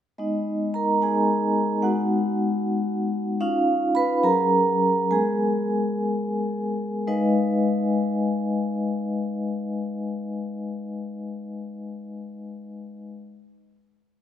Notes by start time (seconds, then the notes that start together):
0.18 G#3 B3 D#4 D#5
0.74 A#4 A#5
1.02 G#3 B3 D#4 G#4 G#5
1.82 G#3 B3 D#4 F#4 F#5
3.40 C#4 D#4 F4 F5
3.95 B4 B5
4.23 F#3 C#4 G#4 A#4 A#5
5.11 G#3 B3 G#4 A#4 G#5
7.07 G#3 D#4 B4 D#5 F5 G#5